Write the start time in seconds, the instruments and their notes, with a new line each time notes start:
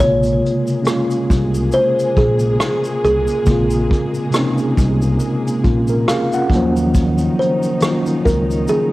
Already playing: tine electric piano C#3 G#3
0.00 upright bass A#1, string section A#2 G#3 A#3 G#4, tine electric piano C3 A#3 F4, kalimba C#5, kick, shaker
0.23 shaker
0.26 shaker
0.46 closed hi-hat, shaker
0.67 shaker
0.70 shaker
0.82 tine electric piano G#3 A#3 C#4, shaker
0.87 tine electric piano F4, cross-stick, shaker
1.11 shaker
1.30 upright bass C2, kick, closed hi-hat, shaker
1.33 shaker
1.54 shaker
1.72 kalimba C5, shaker
1.99 shaker
2.17 upright bass A#1, kalimba G#4, kick, closed hi-hat, shaker
2.39 shaker
2.60 cross-stick, shaker
2.84 shaker
3.04 upright bass C2, kalimba G#4, closed hi-hat, shaker
3.27 shaker
3.30 shaker
3.44 upright bass A#1, tine electric piano C#3 G#3 A#3, kick, shaker
3.49 tine electric piano C4 F4
3.71 shaker
3.73 shaker
3.91 kick, closed hi-hat, shaker
4.14 shaker
4.30 tine electric piano C3 G#3 A#3, shaker
4.34 tine electric piano C4 C#4 D#4, cross-stick, shaker
4.58 shaker
4.77 upright bass C2, kick, closed hi-hat, shaker
4.81 shaker
5.02 shaker
5.20 shaker
5.47 shaker
5.64 upright bass A#1, tine electric piano C#4 F4, kick, closed hi-hat, shaker
5.87 tine electric piano A#4, shaker
6.08 tine electric piano F4 G#4 F5, cross-stick, shaker
6.32 tine electric piano C#4 F4 F#5, shaker
6.49 upright bass D#2, string section C#3 D#3 D#4, tine electric piano D#3 F#3 A#3, kick, closed hi-hat, shaker
6.54 tine electric piano F3 C#4
6.77 shaker
6.94 kick, shaker
7.18 shaker
7.21 shaker
7.39 kalimba C5, closed hi-hat, shaker
7.63 shaker
7.65 shaker
7.80 tine electric piano D#3 F#3, shaker
7.82 tine electric piano A#3 C#4, cross-stick, shaker
7.87 tine electric piano F4
8.06 shaker
8.25 upright bass C#2, kalimba A#4, kick, closed hi-hat, shaker
8.29 shaker
8.51 shaker
8.53 shaker
8.68 kalimba G#4, shaker